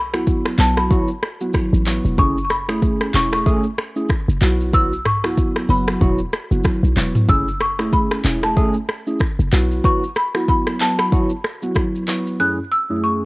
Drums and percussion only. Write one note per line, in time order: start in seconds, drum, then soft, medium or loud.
0.13 finger snap medium
0.13 cross-stick medium
0.13 shaker soft
0.27 kick medium
0.27 shaker medium
0.46 finger snap medium
0.46 cross-stick medium
0.46 shaker medium
0.58 clap loud
0.58 shaker medium
0.77 finger snap medium
0.77 cross-stick loud
0.77 shaker soft
0.91 kick loud
0.91 shaker medium
1.08 shaker medium
1.23 finger snap medium
1.23 cross-stick loud
1.41 shaker medium
1.54 finger snap medium
1.54 kick medium
1.54 cross-stick medium
1.54 shaker medium
1.74 shaker medium
1.86 clap loud
1.86 shaker soft
2.05 shaker medium
2.18 kick loud
2.18 shaker medium
2.38 shaker medium
2.50 finger snap medium
2.50 cross-stick loud
2.50 shaker medium
2.69 finger snap medium
2.69 cross-stick medium
2.69 shaker soft
2.82 kick medium
2.82 shaker medium
3.01 finger snap medium
3.01 cross-stick loud
3.01 shaker medium
3.14 clap loud
3.14 shaker medium
3.33 finger snap medium
3.33 cross-stick medium
3.33 shaker soft
3.46 kick loud
3.46 shaker medium
3.63 shaker medium
3.78 finger snap medium
3.78 cross-stick medium
3.96 shaker medium
4.09 finger snap medium
4.09 kick loud
4.09 cross-stick medium
4.09 shaker medium
4.29 shaker medium
4.41 clap medium
4.41 shaker medium
4.61 shaker medium
4.74 kick loud
4.74 shaker medium
4.93 shaker medium
5.05 finger snap medium
5.05 cross-stick medium
5.05 mid tom medium
5.24 finger snap medium
5.24 cross-stick loud
5.24 shaker medium
5.38 kick loud
5.38 shaker medium
5.56 finger snap medium
5.56 cross-stick medium
5.56 shaker medium
5.69 open hi-hat medium
5.69 shaker medium
5.88 finger snap medium
5.88 cross-stick loud
5.88 shaker soft
6.01 kick loud
6.01 shaker medium
6.19 shaker medium
6.33 finger snap medium
6.33 cross-stick loud
6.33 shaker medium
6.51 shaker medium
6.64 finger snap medium
6.64 kick medium
6.64 cross-stick medium
6.64 shaker medium
6.84 shaker medium
6.96 clap medium
6.96 open hi-hat medium
6.96 shaker medium
7.15 mid tom medium
7.15 shaker medium
7.29 kick loud
7.29 shaker medium
7.48 shaker medium
7.60 finger snap medium
7.60 cross-stick medium
7.60 shaker medium
7.79 finger snap medium
7.79 cross-stick medium
7.79 shaker soft
7.93 kick loud
7.93 shaker medium
8.11 finger snap medium
8.11 cross-stick loud
8.11 shaker medium
8.24 clap loud
8.24 shaker medium
8.43 finger snap medium
8.43 cross-stick loud
8.43 shaker soft
8.57 kick loud
8.57 shaker medium
8.74 shaker medium
8.89 finger snap medium
8.89 cross-stick medium
9.07 shaker medium
9.20 finger snap medium
9.20 kick loud
9.20 cross-stick medium
9.20 shaker medium
9.40 shaker medium
9.52 clap medium
9.52 shaker medium
9.71 shaker medium
9.84 kick loud
9.84 shaker medium
10.04 shaker medium
10.16 finger snap medium
10.16 cross-stick medium
10.16 shaker medium
10.35 finger snap medium
10.35 cross-stick loud
10.35 shaker soft
10.48 kick loud
10.48 shaker medium
10.67 finger snap medium
10.67 cross-stick medium
10.67 shaker medium
10.80 clap loud
10.80 shaker medium
10.99 finger snap medium
10.99 cross-stick medium
10.99 shaker soft
11.12 kick loud
11.12 shaker medium
11.30 shaker medium
11.44 finger snap medium
11.44 cross-stick loud
11.62 shaker medium
11.75 finger snap medium
11.75 kick medium
11.75 cross-stick loud
11.75 shaker medium
11.95 shaker medium
12.07 clap loud
12.07 shaker medium
12.27 shaker medium